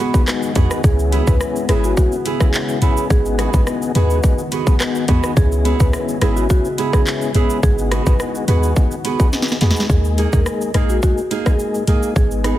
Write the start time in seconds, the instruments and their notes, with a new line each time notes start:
Already playing: ambient pad D#3 G#3 B3 F#4
0.00 nylon-string guitar B3 F#4 G#4
0.14 tonewheel organ B3 D#4 F#4 G#4, kick, shaker
0.27 cross-stick, clap, shaker
0.42 shaker
0.55 808-style bass E2, tonewheel organ B3 D#4 F#4 G#4, nylon-string guitar B3 F#4 G#4, kick, closed hi-hat, shaker
0.71 cross-stick, shaker
0.84 808-style bass C#2, ambient pad C#3 E4, tonewheel organ B3 C#4 E4 G#4, marimba G#4, kick, shaker
0.99 shaker
1.12 nylon-string guitar B3 E4 G#4, closed hi-hat, shaker
1.27 808-style bass C#2, tonewheel organ B3 C#4 E4 G#4, marimba B4, kick, shaker
1.41 cross-stick, shaker
1.56 shaker
1.69 808-style bass G#1, nylon-string guitar B3 E4 G#4, tonewheel organ B3 C#4 E4 G#4, marimba G#4, cross-stick, closed hi-hat, shaker
1.84 marimba F#4, shaker
1.97 tonewheel organ B3 C#4 E4 G#4, marimba F#4, kick, shaker
2.12 shaker
2.25 nylon-string guitar B3 E4 G#4, closed hi-hat, shaker
2.40 tonewheel organ B3 C#4 E4 G#4, marimba G#4, kick, cross-stick, shaker
2.54 clap, shaker
2.69 shaker
2.82 808-style bass A#1, nylon-string guitar B3 E4 G#4, tonewheel organ B3 C#4 E4 G#4, closed hi-hat, shaker
2.97 shaker
3.10 808-style bass G#1, ambient pad D#3 F#4, tonewheel organ B3 D#4 F#4 G#4, marimba G#4, kick, shaker
3.25 shaker
3.38 nylon-string guitar B3 F#4 G#4, cross-stick, closed hi-hat, shaker
3.53 808-style bass G#1, tonewheel organ B3 D#4 F#4 G#4, marimba B4, kick, shaker
3.67 cross-stick, shaker
3.82 shaker
3.95 808-style bass D#2, nylon-string guitar B3 F#4 G#4, tonewheel organ B3 D#4 F#4 G#4, marimba B4, closed hi-hat, shaker
4.10 shaker
4.23 tonewheel organ B3 D#4 F#4 G#4, kick, shaker
4.38 shaker
4.52 nylon-string guitar B3 F#4 G#4, closed hi-hat, shaker
4.67 tonewheel organ B3 D#4 F#4 G#4, kick, shaker
4.80 cross-stick, clap, shaker
4.95 shaker
5.08 808-style bass E2, tonewheel organ B3 D#4 F#4 G#4, nylon-string guitar B3 F#4 G#4, kick, closed hi-hat, shaker
5.23 cross-stick, shaker
5.36 808-style bass C#2, ambient pad C#3 G#3 E4, tonewheel organ B3 C#4 E4 G#4, marimba G#4, kick, shaker
5.52 shaker
5.65 nylon-string guitar B3 E4 G#4, closed hi-hat, shaker
5.80 808-style bass C#2, tonewheel organ B3 C#4 E4 G#4, marimba B4, kick, shaker
5.93 cross-stick, shaker
6.09 shaker
6.21 808-style bass G#1, nylon-string guitar B3 E4 G#4, tonewheel organ B3 C#4 E4 G#4, marimba G#4, cross-stick, closed hi-hat, shaker
6.37 marimba F#4, shaker
6.50 tonewheel organ B3 C#4 E4 G#4, marimba F#4, kick, shaker
6.65 shaker
6.78 nylon-string guitar B3 E4 G#4, closed hi-hat, shaker
6.93 tonewheel organ B3 C#4 E4 G#4, marimba G#4, kick, cross-stick, shaker
7.06 clap, shaker
7.22 shaker
7.35 808-style bass A#1, tonewheel organ B3 C#4 E4 G#4, nylon-string guitar B3 E4 G#4, closed hi-hat, shaker
7.50 shaker
7.63 808-style bass G#1, ambient pad D#3 F#4, tonewheel organ B3 D#4 F#4 G#4, marimba G#4, kick, shaker
7.78 shaker
7.91 nylon-string guitar B3 F#4 G#4, cross-stick, closed hi-hat, shaker
8.06 808-style bass G#1, tonewheel organ B3 D#4 F#4 G#4, marimba B4, kick, shaker
8.20 cross-stick, shaker
8.35 shaker
8.48 808-style bass D#2, nylon-string guitar B3 F#4 G#4, tonewheel organ B3 D#4 F#4 G#4, marimba B4, closed hi-hat, shaker
8.63 shaker
8.76 tonewheel organ B3 D#4 F#4 G#4, kick, shaker
8.91 shaker
9.04 nylon-string guitar B3 F#4 G#4, closed hi-hat, shaker
9.20 tonewheel organ B3 D#4 F#4 G#4, kick, shaker
9.33 snare, shaker
9.42 snare
9.48 snare, shaker
9.61 808-style bass E2, nylon-string guitar B3 F#4 G#4, tonewheel organ B3 D#4 F#4 G#4, snare, closed hi-hat, shaker
9.71 snare
9.76 snare, shaker
9.89 808-style bass D#2, tonewheel organ G#3 A#3 D#4 G#4, marimba G#4, kick, shaker
10.05 shaker
10.18 nylon-string guitar A#3 D#4 G#4, closed hi-hat, shaker
10.33 808-style bass D#2, tonewheel organ G#3 A#3 D#4 G#4, marimba A#4, kick, shaker
10.46 cross-stick, shaker
10.61 shaker
10.74 808-style bass A#1, tonewheel organ G#3 A#3 D#4 G#4, nylon-string guitar A#3 D#4 G#4, marimba G#4, cross-stick, closed hi-hat, shaker
10.89 marimba F#4, shaker
11.02 tonewheel organ G#3 A#3 D#4 G#4, marimba F#4, kick, shaker
11.18 shaker
11.31 nylon-string guitar A#3 D#4 G#4, closed hi-hat, shaker
11.46 tonewheel organ G#3 A#3 D#4 G#4, marimba G#4, kick, cross-stick, shaker
11.59 shaker
11.74 muted nylon-string guitar stroke, shaker
11.87 808-style bass B1, tonewheel organ G#3 A#3 D#4 G#4, nylon-string guitar A#3 D#4 G#4, closed hi-hat, shaker
12.03 shaker
12.16 808-style bass G#1, tonewheel organ G#3 B3 D#4 G#4, marimba G#4, kick, shaker
12.31 shaker
12.44 nylon-string guitar B3 D#4 G#4, cross-stick, closed hi-hat, shaker